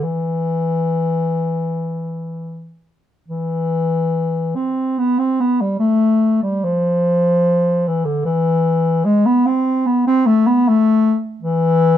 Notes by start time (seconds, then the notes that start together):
0.03 E3
3.28 E3
4.55 C4
4.98 B3
5.19 C4
5.40 B3
5.61 G3
5.80 A3
6.43 G3
6.64 F3
7.87 E3
8.05 D3
8.25 E3
9.05 G#3
9.26 B3
9.46 C4
9.86 B3
10.07 C4
10.26 A3
10.47 B3
10.68 A3
11.42 E3